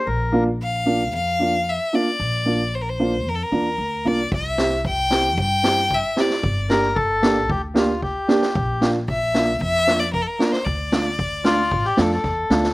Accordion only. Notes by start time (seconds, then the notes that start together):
0.06 A#4
6.70 A#4
6.96 A4
7.50 G4
7.77 F4
8.03 G4
11.45 F4
11.86 G4
11.99 A4
12.13 A4